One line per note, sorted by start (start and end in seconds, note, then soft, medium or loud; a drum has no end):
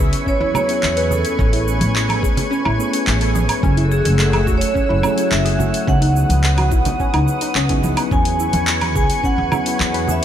0.00 0.10 C#2 medium
0.00 0.50 F#3 medium
0.00 0.51 B3 medium
0.00 0.52 C#4 medium
0.00 8.11 C#4 medium
0.00 0.52 E4 medium
0.00 0.11 G#4 medium
0.00 0.53 G#4 medium
0.00 3.59 B4 medium
0.00 8.11 C#5 medium
0.00 1.37 E5 medium
0.00 5.84 G#5 medium
0.00 3.59 C#6 medium
0.13 open hi-hat medium
0.13 cabasa soft
0.26 0.39 C#4 loud
0.26 0.56 C#5 loud
0.26 kick medium
0.26 cabasa soft
0.40 0.52 E2 loud
0.40 0.48 E4 medium
0.53 0.66 F#3 medium
0.53 0.66 B3 medium
0.53 0.67 C#4 medium
0.53 0.67 E4 medium
0.53 0.67 G#4 medium
0.53 1.08 C#5 loud
0.53 low conga medium
0.53 cabasa medium
0.53 low woodblock medium
0.67 1.34 F#3 medium
0.67 1.35 B3 medium
0.67 1.36 C#4 medium
0.67 1.36 E4 medium
0.67 open hi-hat medium
0.67 cabasa soft
0.71 1.37 G#4 medium
0.83 1.22 E2 loud
0.83 clap loud
0.83 cabasa soft
0.97 1.04 B4 medium
0.97 open hi-hat soft
1.11 1.23 G#4 medium
1.11 1.64 A4 medium
1.11 low conga medium
1.11 cabasa medium
1.25 open hi-hat medium
1.25 cabasa soft
1.37 1.78 A1 loud
1.37 2.75 A3 medium
1.37 2.75 B3 medium
1.37 1.51 C#4 loud
1.37 2.76 C#4 medium
1.37 2.76 E4 medium
1.37 kick loud
1.37 cabasa soft
1.41 2.77 G#4 medium
1.53 1.60 E4 medium
1.53 open hi-hat soft
1.68 cabasa medium
1.81 2.23 A1 medium
1.81 open hi-hat medium
1.81 high conga medium
1.81 cabasa soft
1.96 clap loud
1.96 cabasa soft
2.09 2.16 A4 medium
2.09 open hi-hat soft
2.09 high conga medium
2.09 low woodblock medium
2.23 2.35 E1 medium
2.23 2.36 G#4 medium
2.23 kick loud
2.23 cabasa medium
2.37 open hi-hat medium
2.37 low conga medium
2.37 cabasa soft
2.51 2.63 C#4 loud
2.51 cabasa soft
2.65 2.77 A1 loud
2.65 2.73 E4 medium
2.65 low woodblock medium
2.78 2.90 A3 medium
2.78 2.91 B3 medium
2.78 2.91 C#4 medium
2.78 2.91 E4 medium
2.78 2.92 G#4 medium
2.78 cabasa medium
2.91 3.59 A3 medium
2.91 3.59 B3 medium
2.91 3.60 C#4 medium
2.91 3.60 E4 medium
2.91 open hi-hat medium
2.91 cabasa soft
2.96 3.61 G#4 medium
3.07 3.46 A1 medium
3.07 clap medium
3.07 cabasa soft
3.21 3.29 A4 medium
3.21 open hi-hat soft
3.35 3.48 G#4 medium
3.35 high conga medium
3.35 cabasa medium
3.49 open hi-hat medium
3.49 cabasa soft
3.49 low woodblock medium
3.61 4.02 F#1 loud
3.61 4.99 F#3 medium
3.61 4.99 A3 medium
3.61 5.85 A3 medium
3.61 5.00 C#4 medium
3.61 3.76 C#4 loud
3.61 5.00 E4 medium
3.61 8.08 F#5 medium
3.61 5.85 E6 medium
3.61 kick loud
3.61 cabasa soft
3.65 5.01 G#4 medium
3.77 3.85 E4 medium
3.77 open hi-hat soft
3.85 3.92 A4 medium
3.91 4.43 G#4 medium
3.91 cabasa medium
4.05 4.47 F#1 medium
4.05 open hi-hat medium
4.05 high conga medium
4.05 cabasa soft
4.19 clap loud
4.19 cabasa soft
4.33 4.40 G#4 medium
4.33 open hi-hat soft
4.33 high conga medium
4.33 low woodblock medium
4.47 4.59 E1 medium
4.47 4.60 F#4 medium
4.47 kick loud
4.47 cabasa medium
4.58 5.28 C#5 loud
4.58 open hi-hat medium
4.62 cabasa soft
4.74 4.87 C#4 loud
4.74 kick medium
4.74 cabasa soft
4.89 5.02 F#1 loud
4.89 4.97 E4 medium
5.03 5.14 F#3 medium
5.03 5.15 A3 medium
5.03 5.16 C#4 medium
5.03 5.16 E4 medium
5.03 5.16 G#4 medium
5.03 low conga medium
5.03 cabasa medium
5.03 low woodblock medium
5.15 5.83 F#3 medium
5.15 5.84 A3 medium
5.15 5.84 C#4 medium
5.15 5.85 E4 medium
5.15 open hi-hat medium
5.15 cabasa soft
5.20 5.85 G#4 medium
5.31 5.70 F#1 medium
5.31 5.89 E5 loud
5.31 clap loud
5.31 cabasa soft
5.45 5.53 G#4 medium
5.45 open hi-hat soft
5.59 5.72 F#4 medium
5.59 low conga medium
5.59 cabasa medium
5.74 open hi-hat medium
5.74 cabasa soft
5.85 6.26 C#2 loud
5.85 7.23 F#3 medium
5.85 7.24 B3 medium
5.85 6.00 C#4 loud
5.85 7.24 D#4 medium
5.85 7.25 E4 medium
5.85 10.25 B4 medium
5.85 7.80 F#5 loud
5.85 8.10 D#6 medium
5.85 kick loud
5.85 cabasa soft
5.90 7.25 G#4 medium
6.01 6.09 D#4 medium
6.01 open hi-hat soft
6.16 cabasa medium
6.29 6.72 C#2 medium
6.29 open hi-hat medium
6.29 high conga medium
6.29 cabasa soft
6.44 clap loud
6.44 cabasa soft
6.58 6.65 F#4 medium
6.58 open hi-hat soft
6.58 high conga medium
6.58 low woodblock medium
6.71 6.84 B1 medium
6.71 6.84 E4 medium
6.71 kick loud
6.71 cabasa medium
6.85 open hi-hat medium
6.85 low conga loud
6.85 cabasa soft
7.00 7.12 C#4 loud
7.00 kick medium
7.00 cabasa soft
7.14 7.25 C#2 loud
7.14 7.21 D#4 medium
7.14 open hi-hat soft
7.14 low woodblock medium
7.28 cabasa medium
7.41 7.49 D#4 medium
7.41 open hi-hat medium
7.41 cabasa soft
7.55 7.94 C#2 medium
7.55 7.68 C#4 medium
7.55 clap loud
7.55 cabasa soft
7.69 8.08 F#3 medium
7.69 8.08 B3 medium
7.69 7.82 C#4 medium
7.69 8.09 D#4 medium
7.69 8.09 E4 medium
7.69 8.09 G#4 medium
7.69 kick medium
7.69 open hi-hat soft
7.84 high conga medium
7.84 cabasa medium
7.97 open hi-hat medium
7.97 cabasa soft
7.97 low woodblock medium
8.09 8.50 E2 medium
8.09 9.47 F#3 medium
8.09 9.48 B3 medium
8.09 9.48 C#4 medium
8.09 8.24 C#4 loud
8.09 10.25 C#4 medium
8.09 9.49 E4 medium
8.09 10.25 C#5 medium
8.09 10.25 G#5 medium
8.09 8.64 G#5 loud
8.09 10.25 C#6 medium
8.09 kick loud
8.09 cabasa soft
8.14 9.49 G#4 medium
8.25 open hi-hat soft
8.40 8.47 E4 medium
8.40 cabasa medium
8.53 8.96 E2 medium
8.53 open hi-hat medium
8.53 high conga medium
8.53 cabasa soft
8.67 clap loud
8.67 cabasa soft
8.81 8.89 B4 medium
8.81 open hi-hat soft
8.81 high conga medium
8.81 low woodblock medium
8.96 9.08 C#2 medium
8.96 9.08 G#4 medium
8.96 9.25 G#5 loud
8.96 kick loud
8.96 cabasa medium
9.10 open hi-hat medium
9.10 cabasa soft
9.24 9.36 C#4 loud
9.24 10.11 F#5 loud
9.24 kick medium
9.24 cabasa soft
9.38 9.50 E2 loud
9.51 9.63 F#3 medium
9.51 9.63 B3 medium
9.51 9.64 C#4 medium
9.51 9.59 E4 medium
9.51 9.64 E4 medium
9.51 9.64 G#4 medium
9.51 low conga medium
9.51 cabasa medium
9.51 low woodblock medium
9.64 10.25 F#3 medium
9.64 10.25 B3 medium
9.64 10.25 C#4 medium
9.64 10.25 E4 medium
9.64 open hi-hat medium
9.64 cabasa soft
9.68 10.25 G#4 medium
9.80 10.19 E2 loud
9.80 clap loud
9.80 cabasa soft
9.94 10.01 B4 medium
9.94 open hi-hat soft
10.08 10.21 G#4 medium
10.08 10.25 E5 medium
10.08 low conga medium
10.08 cabasa medium